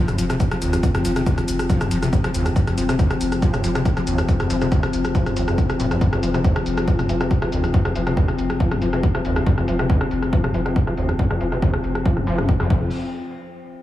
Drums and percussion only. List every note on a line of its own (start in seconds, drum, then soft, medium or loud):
0.08 cross-stick medium
0.08 closed hi-hat medium
0.08 shaker soft
0.18 open hi-hat loud
0.18 shaker medium
0.30 cross-stick medium
0.30 closed hi-hat medium
0.30 shaker soft
0.40 kick loud
0.40 closed hi-hat medium
0.40 shaker soft
0.51 cross-stick medium
0.51 closed hi-hat medium
0.62 open hi-hat medium
0.62 shaker medium
0.73 cross-stick medium
0.73 closed hi-hat medium
0.73 shaker soft
0.83 kick loud
0.83 closed hi-hat medium
0.83 shaker soft
0.95 cross-stick medium
0.95 closed hi-hat medium
1.05 open hi-hat loud
1.05 shaker medium
1.16 cross-stick medium
1.16 closed hi-hat medium
1.16 shaker soft
1.26 kick loud
1.26 closed hi-hat medium
1.26 shaker soft
1.38 cross-stick medium
1.38 closed hi-hat medium
1.48 open hi-hat loud
1.48 shaker medium
1.59 cross-stick medium
1.59 closed hi-hat medium
1.59 shaker soft
1.70 kick loud
1.70 closed hi-hat medium
1.70 shaker soft
1.81 cross-stick medium
1.81 closed hi-hat medium
1.81 shaker soft
1.91 open hi-hat loud
1.91 shaker medium
2.03 cross-stick medium
2.03 closed hi-hat medium
2.03 shaker soft
2.13 kick loud
2.13 closed hi-hat medium
2.13 shaker soft
2.24 cross-stick medium
2.24 closed hi-hat medium
2.34 open hi-hat loud
2.34 shaker medium
2.46 cross-stick medium
2.46 closed hi-hat medium
2.46 shaker soft
2.56 kick loud
2.56 closed hi-hat medium
2.56 shaker soft
2.67 cross-stick medium
2.67 closed hi-hat medium
2.78 open hi-hat loud
2.78 shaker medium
2.89 cross-stick medium
2.89 closed hi-hat medium
2.89 shaker soft
2.99 kick loud
2.99 closed hi-hat medium
2.99 shaker soft
3.11 cross-stick medium
3.11 closed hi-hat medium
3.21 open hi-hat loud
3.21 shaker medium
3.32 cross-stick medium
3.32 closed hi-hat medium
3.32 shaker soft
3.42 kick loud
3.42 closed hi-hat medium
3.42 shaker soft
3.54 cross-stick medium
3.54 closed hi-hat medium
3.54 shaker soft
3.64 open hi-hat loud
3.64 shaker medium
3.75 cross-stick loud
3.75 closed hi-hat medium
3.75 shaker soft
3.85 kick loud
3.85 closed hi-hat medium
3.85 shaker soft
3.97 cross-stick medium
3.97 closed hi-hat medium
4.07 open hi-hat loud
4.07 shaker medium
4.18 cross-stick loud
4.18 closed hi-hat medium
4.18 shaker soft
4.29 kick loud
4.29 closed hi-hat medium
4.29 shaker soft
4.40 cross-stick medium
4.40 closed hi-hat medium
4.50 open hi-hat loud
4.50 shaker medium
4.62 cross-stick medium
4.62 closed hi-hat medium
4.62 shaker soft
4.72 kick loud
4.72 closed hi-hat medium
4.72 shaker soft
4.83 cross-stick loud
4.83 closed hi-hat medium
4.93 open hi-hat loud
4.93 shaker medium
5.05 cross-stick loud
5.05 closed hi-hat medium
5.05 shaker soft
5.15 kick loud
5.15 closed hi-hat medium
5.15 shaker soft
5.26 cross-stick medium
5.26 closed hi-hat medium
5.26 shaker soft
5.37 open hi-hat loud
5.37 shaker medium
5.48 cross-stick loud
5.48 closed hi-hat medium
5.48 shaker soft
5.58 kick loud
5.58 closed hi-hat medium
5.58 shaker soft
5.70 cross-stick medium
5.70 closed hi-hat medium
5.70 shaker soft
5.80 open hi-hat loud
5.80 shaker medium
5.91 cross-stick medium
5.91 closed hi-hat medium
5.91 shaker soft
6.01 kick loud
6.01 closed hi-hat medium
6.01 shaker soft
6.13 cross-stick medium
6.13 closed hi-hat soft
6.23 open hi-hat loud
6.23 shaker medium
6.34 cross-stick medium
6.34 closed hi-hat medium
6.34 shaker soft
6.44 kick loud
6.44 closed hi-hat medium
6.44 shaker soft
6.56 cross-stick loud
6.56 closed hi-hat medium
6.66 open hi-hat loud
6.66 shaker medium
6.77 cross-stick loud
6.77 closed hi-hat medium
6.77 shaker soft
6.88 kick loud
6.88 closed hi-hat medium
6.88 shaker soft
6.99 cross-stick medium
6.99 closed hi-hat soft
6.99 shaker soft
7.09 open hi-hat loud
7.09 shaker medium
7.21 cross-stick medium
7.21 closed hi-hat soft
7.21 shaker soft
7.31 kick loud
7.31 closed hi-hat medium
7.31 shaker soft
7.42 cross-stick medium
7.42 closed hi-hat soft
7.52 open hi-hat loud
7.52 shaker medium
7.64 cross-stick medium
7.64 closed hi-hat soft
7.64 shaker soft
7.74 kick loud
7.74 closed hi-hat medium
7.74 shaker soft
7.85 cross-stick medium
7.85 closed hi-hat medium
7.95 open hi-hat loud
7.95 shaker medium
8.07 cross-stick medium
8.07 closed hi-hat medium
8.07 shaker soft
8.17 kick loud
8.17 closed hi-hat medium
8.17 shaker soft
8.28 cross-stick medium
8.28 closed hi-hat soft
8.39 open hi-hat medium
8.39 shaker medium
8.50 cross-stick loud
8.50 closed hi-hat medium
8.50 shaker soft
8.60 kick loud
8.60 closed hi-hat medium
8.60 shaker soft
8.71 cross-stick medium
8.71 closed hi-hat soft
8.71 shaker soft
8.82 open hi-hat loud
8.82 shaker medium
8.93 cross-stick medium
8.93 closed hi-hat medium
8.93 shaker soft
9.03 kick loud
9.03 closed hi-hat medium
9.03 shaker soft
9.15 cross-stick medium
9.15 closed hi-hat medium
9.25 open hi-hat medium
9.25 shaker medium
9.36 cross-stick medium
9.36 closed hi-hat medium
9.36 shaker soft
9.46 kick loud
9.46 closed hi-hat medium
9.46 shaker soft
9.58 cross-stick medium
9.58 closed hi-hat medium
9.68 open hi-hat loud
9.68 shaker medium
9.79 cross-stick medium
9.79 closed hi-hat medium
9.79 shaker soft
9.90 kick loud
9.90 closed hi-hat medium
9.90 shaker soft
10.01 cross-stick medium
10.01 closed hi-hat medium
10.11 open hi-hat medium
10.11 shaker medium
10.22 cross-stick medium
10.22 closed hi-hat medium
10.22 shaker soft
10.33 kick loud
10.33 closed hi-hat medium
10.33 shaker soft
10.44 cross-stick medium
10.44 closed hi-hat soft
10.44 shaker soft
10.54 open hi-hat loud
10.54 shaker medium
10.66 cross-stick medium
10.66 closed hi-hat medium
10.66 shaker soft
10.76 kick loud
10.76 closed hi-hat medium
10.76 shaker soft
10.87 cross-stick medium
10.87 closed hi-hat medium
10.97 open hi-hat medium
10.97 shaker medium
11.09 cross-stick medium
11.09 closed hi-hat medium
11.09 shaker soft
11.19 kick loud
11.19 closed hi-hat medium
11.19 shaker soft
11.30 cross-stick medium
11.30 closed hi-hat medium
11.30 shaker soft
11.41 open hi-hat loud
11.41 shaker medium
11.52 cross-stick medium
11.52 closed hi-hat medium
11.52 shaker soft
11.62 kick loud
11.62 closed hi-hat medium
11.62 shaker soft
11.73 cross-stick medium
11.73 closed hi-hat medium
11.84 open hi-hat medium
11.84 shaker medium
11.95 cross-stick medium
11.95 closed hi-hat medium
11.95 shaker soft
12.05 kick loud
12.05 closed hi-hat medium
12.05 shaker soft
12.17 cross-stick medium
12.17 closed hi-hat medium
12.17 shaker soft
12.27 open hi-hat loud
12.27 shaker medium
12.38 cross-stick medium
12.38 closed hi-hat medium
12.38 shaker soft
12.49 kick loud
12.49 closed hi-hat medium
12.49 shaker soft
12.60 cross-stick medium
12.60 closed hi-hat medium
12.60 shaker soft
12.70 kick loud
12.70 crash medium